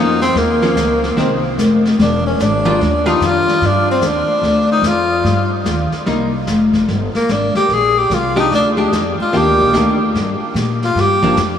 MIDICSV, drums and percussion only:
0, 0, Header, 1, 2, 480
1, 0, Start_track
1, 0, Key_signature, -3, "major"
1, 0, Tempo, 408163
1, 1375, Time_signature, 4, 2, 24, 8
1, 7134, Key_signature, -3, "minor"
1, 13627, End_track
2, 0, Start_track
2, 0, Title_t, "Drums"
2, 248, Note_on_c, 9, 38, 39
2, 366, Note_off_c, 9, 38, 0
2, 418, Note_on_c, 9, 25, 49
2, 418, Note_on_c, 9, 38, 45
2, 535, Note_off_c, 9, 38, 0
2, 731, Note_on_c, 9, 38, 40
2, 848, Note_off_c, 9, 38, 0
2, 900, Note_on_c, 9, 44, 62
2, 906, Note_on_c, 9, 38, 69
2, 1018, Note_off_c, 9, 44, 0
2, 1024, Note_off_c, 9, 38, 0
2, 1220, Note_on_c, 9, 38, 46
2, 1337, Note_off_c, 9, 38, 0
2, 1389, Note_off_c, 9, 25, 0
2, 1389, Note_on_c, 9, 25, 51
2, 1389, Note_on_c, 9, 38, 43
2, 1507, Note_off_c, 9, 38, 0
2, 1863, Note_on_c, 9, 44, 65
2, 1869, Note_on_c, 9, 38, 65
2, 1980, Note_off_c, 9, 44, 0
2, 1986, Note_off_c, 9, 38, 0
2, 2181, Note_on_c, 9, 38, 41
2, 2298, Note_off_c, 9, 38, 0
2, 2345, Note_off_c, 9, 25, 0
2, 2345, Note_on_c, 9, 25, 54
2, 2345, Note_on_c, 9, 38, 47
2, 2462, Note_off_c, 9, 38, 0
2, 2821, Note_on_c, 9, 44, 62
2, 2827, Note_on_c, 9, 38, 65
2, 2938, Note_off_c, 9, 44, 0
2, 2944, Note_off_c, 9, 38, 0
2, 3306, Note_off_c, 9, 25, 0
2, 3306, Note_on_c, 9, 25, 53
2, 3306, Note_on_c, 9, 38, 48
2, 3423, Note_off_c, 9, 38, 0
2, 3613, Note_on_c, 9, 38, 38
2, 3731, Note_off_c, 9, 38, 0
2, 3781, Note_on_c, 9, 44, 61
2, 3787, Note_on_c, 9, 38, 67
2, 3899, Note_off_c, 9, 44, 0
2, 3905, Note_off_c, 9, 38, 0
2, 4093, Note_on_c, 9, 38, 41
2, 4211, Note_off_c, 9, 38, 0
2, 4254, Note_off_c, 9, 25, 0
2, 4254, Note_on_c, 9, 25, 45
2, 4254, Note_on_c, 9, 38, 52
2, 4372, Note_off_c, 9, 38, 0
2, 4726, Note_on_c, 9, 44, 55
2, 4731, Note_on_c, 9, 38, 69
2, 4843, Note_off_c, 9, 44, 0
2, 4849, Note_off_c, 9, 38, 0
2, 5214, Note_off_c, 9, 25, 0
2, 5214, Note_on_c, 9, 25, 50
2, 5214, Note_on_c, 9, 38, 47
2, 5332, Note_off_c, 9, 38, 0
2, 5686, Note_on_c, 9, 44, 56
2, 5692, Note_on_c, 9, 38, 78
2, 5804, Note_off_c, 9, 44, 0
2, 5809, Note_off_c, 9, 38, 0
2, 6176, Note_off_c, 9, 25, 0
2, 6176, Note_on_c, 9, 25, 45
2, 6176, Note_on_c, 9, 38, 47
2, 6293, Note_off_c, 9, 38, 0
2, 6649, Note_on_c, 9, 44, 55
2, 6655, Note_on_c, 9, 38, 70
2, 6767, Note_off_c, 9, 44, 0
2, 6773, Note_off_c, 9, 38, 0
2, 6964, Note_on_c, 9, 38, 45
2, 7082, Note_off_c, 9, 38, 0
2, 7133, Note_off_c, 9, 25, 0
2, 7133, Note_on_c, 9, 25, 47
2, 7133, Note_on_c, 9, 38, 44
2, 7251, Note_off_c, 9, 38, 0
2, 7608, Note_on_c, 9, 44, 57
2, 7614, Note_on_c, 9, 38, 63
2, 7726, Note_off_c, 9, 44, 0
2, 7732, Note_off_c, 9, 38, 0
2, 7920, Note_on_c, 9, 38, 38
2, 7921, Note_on_c, 9, 36, 47
2, 8037, Note_off_c, 9, 38, 0
2, 8038, Note_off_c, 9, 36, 0
2, 8096, Note_off_c, 9, 25, 0
2, 8096, Note_on_c, 9, 25, 51
2, 8096, Note_on_c, 9, 38, 42
2, 8213, Note_off_c, 9, 38, 0
2, 8405, Note_on_c, 9, 38, 40
2, 8522, Note_off_c, 9, 38, 0
2, 8568, Note_on_c, 9, 44, 47
2, 8574, Note_on_c, 9, 38, 65
2, 8686, Note_off_c, 9, 44, 0
2, 8692, Note_off_c, 9, 38, 0
2, 8879, Note_on_c, 9, 38, 43
2, 8997, Note_off_c, 9, 38, 0
2, 9049, Note_off_c, 9, 25, 0
2, 9049, Note_on_c, 9, 25, 43
2, 9049, Note_on_c, 9, 38, 42
2, 9166, Note_off_c, 9, 38, 0
2, 9533, Note_on_c, 9, 44, 60
2, 9539, Note_on_c, 9, 38, 63
2, 9651, Note_off_c, 9, 44, 0
2, 9656, Note_off_c, 9, 38, 0
2, 9845, Note_on_c, 9, 38, 38
2, 9962, Note_off_c, 9, 38, 0
2, 10016, Note_off_c, 9, 25, 0
2, 10016, Note_on_c, 9, 25, 42
2, 10016, Note_on_c, 9, 38, 42
2, 10134, Note_off_c, 9, 38, 0
2, 10495, Note_on_c, 9, 44, 61
2, 10501, Note_on_c, 9, 38, 66
2, 10612, Note_off_c, 9, 44, 0
2, 10618, Note_off_c, 9, 38, 0
2, 10984, Note_off_c, 9, 25, 0
2, 10984, Note_on_c, 9, 25, 52
2, 10984, Note_on_c, 9, 38, 42
2, 11102, Note_off_c, 9, 38, 0
2, 11457, Note_on_c, 9, 44, 49
2, 11463, Note_on_c, 9, 38, 65
2, 11574, Note_off_c, 9, 44, 0
2, 11580, Note_off_c, 9, 38, 0
2, 11940, Note_off_c, 9, 25, 0
2, 11940, Note_on_c, 9, 25, 47
2, 11940, Note_on_c, 9, 38, 47
2, 12058, Note_off_c, 9, 38, 0
2, 12414, Note_on_c, 9, 44, 51
2, 12420, Note_on_c, 9, 38, 68
2, 12532, Note_off_c, 9, 44, 0
2, 12537, Note_off_c, 9, 38, 0
2, 12732, Note_on_c, 9, 38, 43
2, 12850, Note_off_c, 9, 38, 0
2, 12904, Note_off_c, 9, 25, 0
2, 12904, Note_on_c, 9, 25, 53
2, 12904, Note_on_c, 9, 38, 45
2, 13022, Note_off_c, 9, 38, 0
2, 13205, Note_on_c, 9, 36, 49
2, 13323, Note_off_c, 9, 36, 0
2, 13369, Note_on_c, 9, 44, 62
2, 13375, Note_on_c, 9, 38, 68
2, 13486, Note_off_c, 9, 44, 0
2, 13492, Note_off_c, 9, 38, 0
2, 13627, Note_off_c, 9, 25, 0
2, 13627, End_track
0, 0, End_of_file